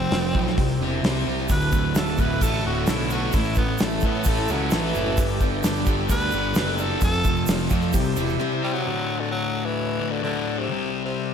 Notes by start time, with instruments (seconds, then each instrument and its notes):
Already playing: distorted electric guitar F2 C3, overdriven electric guitar F3, twelve-string acoustic guitar A3 C4 F4 A4, tenor saxophone C4
0.11 picked electric bass F1, twelve-string acoustic guitar F3 A3 C4 F4 A4, distorted electric guitar F3, grand piano F4 A4, snare, open hi-hat
0.35 picked electric bass B1, twelve-string acoustic guitar A3 C4 F4 A4, distorted electric guitar A3, kick
0.46 twelve-string acoustic guitar C4 F4 A4, snare
0.58 picked electric bass C2, twelve-string acoustic guitar C3 E3 G3 C4 E4 C5, distorted electric guitar C3, grand piano C4 E4 G4, kick, open hi-hat
0.71 twelve-string acoustic guitar G3 C4 E4 C5
0.80 picked electric bass E1, twelve-string acoustic guitar G3 C4 E4 C5, distorted electric guitar G4
1.03 picked electric bass C2, twelve-string acoustic guitar C3 E3 G3 C4 E4 C5, grand piano C4 E4 G4, distorted electric guitar C5, snare, open hi-hat
1.15 twelve-string acoustic guitar G3 C4 E4 C5
1.27 picked electric bass C2, distorted electric guitar G4
1.38 twelve-string acoustic guitar G3 C4 E4 C5
1.47 picked electric bass D1, distorted electric guitar D2, twelve-string acoustic guitar D3 A3, tonewheel organ A3 D4 E4 F#4, grand piano D4 E4 F#4, kick, open hi-hat, shaker
1.51 twelve-string acoustic guitar E4 F#4 A4, tenor saxophone B4
1.61 shaker
1.72 picked electric bass D1, distorted electric guitar A2, twelve-string acoustic guitar A3 E4 F#4 A4, kick, shaker
1.95 picked electric bass D1, distorted electric guitar A2, twelve-string acoustic guitar D3 A3 E4 F#4 A4, grand piano D4 E4 F#4, tenor saxophone A4, snare, open hi-hat, shaker
2.07 shaker
2.18 picked electric bass D1, distorted electric guitar D3, twelve-string acoustic guitar A3 E4, tenor saxophone B4, kick, shaker
2.22 twelve-string acoustic guitar F#4 A4
2.32 twelve-string acoustic guitar E4 F#4 A4
2.41 picked electric bass A1, overdriven electric guitar A3, grand piano D4 E4 F#4, distorted electric guitar E4, tenor saxophone A4, kick, open hi-hat, shaker
2.55 twelve-string acoustic guitar E4 F#4 A4
2.65 picked electric bass D1, overdriven electric guitar D3, distorted electric guitar A3, twelve-string acoustic guitar A3 E4 F#4 A4, tenor saxophone F#4
2.86 picked electric bass B1, twelve-string acoustic guitar D3 A3 E4 F#4 A4, grand piano D4 E4 F#4, distorted electric guitar E4, tenor saxophone E4, snare, open hi-hat, shaker
3.01 twelve-string acoustic guitar E4 F#4 A4
3.10 distorted electric guitar A3, tenor saxophone F#4, shaker
3.24 twelve-string acoustic guitar E4 F#4 A4
3.32 picked electric bass A1, distorted electric guitar A2, twelve-string acoustic guitar A2 E3, tonewheel organ A3 C#4 E4 A4, grand piano C#4 E4 A4, tenor saxophone E4, kick, open hi-hat, shaker
3.37 twelve-string acoustic guitar A3 C#4 E4 A4
3.44 shaker
3.55 distorted electric guitar E3, twelve-string acoustic guitar A3 C#4 E4, tenor saxophone B3, kick, shaker
3.59 twelve-string acoustic guitar A4
3.78 picked electric bass A1, twelve-string acoustic guitar A2 E3 A3 C#4, distorted electric guitar A3, tenor saxophone A3, grand piano C#4 E4 A4, snare, open hi-hat, shaker
3.82 twelve-string acoustic guitar E4 A4
3.90 shaker
4.01 picked electric bass A2, twelve-string acoustic guitar A3 C#4, kick, shaker
4.05 tenor saxophone B3, distorted electric guitar C#4, twelve-string acoustic guitar E4 A4
4.15 twelve-string acoustic guitar A3 C#4 E4 A4
4.24 picked electric bass A1, grand piano C#4 E4 A4, overdriven electric guitar E4, distorted electric guitar A4, kick, open hi-hat, shaker
4.29 tenor saxophone A3
4.36 twelve-string acoustic guitar A3 C#4 E4 A4, shaker
4.48 picked electric bass C#2, tenor saxophone F#3, twelve-string acoustic guitar A3 C#4 E4 A4, distorted electric guitar E4, shaker
4.70 picked electric bass A1, twelve-string acoustic guitar A2 E3 A3 C#4 E4 A4, grand piano C#4 E4 F#4, distorted electric guitar A4, snare, open hi-hat, shaker
4.75 tenor saxophone E3
4.83 twelve-string acoustic guitar A3 C#4 E4 A4
4.94 picked electric bass F#1, distorted electric guitar E4, shaker
5.06 twelve-string acoustic guitar A3 C#4 E4 A4
5.17 picked electric bass G1, distorted electric guitar G2, twelve-string acoustic guitar G3 B3 D4 G4 A4, tonewheel organ B3 D4 G4 A4, grand piano B3 G4 A4, kick, open hi-hat, shaker
5.29 shaker
5.40 picked electric bass G1, distorted electric guitar D3, overdriven electric guitar G3, twelve-string acoustic guitar B3 D4 G4 A4, kick, shaker
5.63 picked electric bass G1, twelve-string acoustic guitar G3 B3 D4 G4 A4, distorted electric guitar G3, grand piano B3 G4 B4, snare, open hi-hat, shaker
5.75 shaker
5.86 picked electric bass G1, twelve-string acoustic guitar B3 D4 G4 A4, distorted electric guitar B3, kick, shaker
5.98 twelve-string acoustic guitar D4 G4 A4
6.09 picked electric bass D2, grand piano B3 G4 A4, overdriven electric guitar D4, distorted electric guitar G4, tenor saxophone B4, kick, open hi-hat, shaker
6.20 twelve-string acoustic guitar D4 G4 A4
6.31 picked electric bass G1, twelve-string acoustic guitar B3 D4 G4 A4, distorted electric guitar D4, shaker
6.54 picked electric bass F#1, twelve-string acoustic guitar G3 B3 D4 G4 A4, grand piano B3 G4 B4, distorted electric guitar G4, snare, open hi-hat, shaker
6.59 tenor saxophone B4
6.67 twelve-string acoustic guitar D4 G4 A4
6.78 distorted electric guitar D4, tenor saxophone A4, shaker
6.90 twelve-string acoustic guitar D4 G4 A4
7.00 picked electric bass F1, distorted electric guitar F2, twelve-string acoustic guitar F3 A3 C4 F4 A4, tonewheel organ A3 C4 F4 A4, grand piano C4 F4 A4, tenor saxophone A4, kick, open hi-hat, shaker
7.13 shaker
7.24 distorted electric guitar C3, overdriven electric guitar F3, twelve-string acoustic guitar A3 C4 F4 A4, kick, shaker
7.36 shaker
7.46 picked electric bass F1, distorted electric guitar F3, twelve-string acoustic guitar F3 A3 C4 F4 A4, grand piano C4 F4 A4, snare, open hi-hat, shaker
7.58 shaker
7.70 picked electric bass F2, twelve-string acoustic guitar A3 C4 F4 A4, distorted electric guitar A3, kick, shaker
7.82 twelve-string acoustic guitar C4 F4 A4, shaker
7.92 picked electric bass C2, distorted electric guitar C3, twelve-string acoustic guitar C3 E3 G3 C4 E4 C5, tonewheel organ G3 C4 E4 G4, grand piano C4 E4 G4, kick, open hi-hat, shaker
8.04 twelve-string acoustic guitar G3 C4 E4 C5, shaker
8.15 picked electric bass E1, twelve-string acoustic guitar G3 C4 E4 C5, distorted electric guitar G4, shaker
8.29 shaker
8.39 twelve-string acoustic guitar C3 E3 G3 C4 E4 C5, grand piano C4 E4 G4, distorted electric guitar C5
8.52 twelve-string acoustic guitar G3 C4 E4 C5
8.63 tenor saxophone G3, distorted electric guitar G4
8.73 tenor saxophone F#3, twelve-string acoustic guitar C4 E4 C5
8.77 twelve-string acoustic guitar G3
8.84 distorted electric guitar D2 A2 D3, tonewheel organ F#3 A3 D4 F#4
9.20 tenor saxophone D3
9.31 tenor saxophone F#3
9.65 tenor saxophone E3
9.99 distorted electric guitar D2 A2 D3
10.11 tenor saxophone D3
10.22 distorted electric guitar D2 A2 D3, tenor saxophone D3
10.59 tenor saxophone C3
10.69 distorted electric guitar C3 G3, tonewheel organ G3 E4 G4 C5
10.73 distorted electric guitar C4
11.05 tenor saxophone C3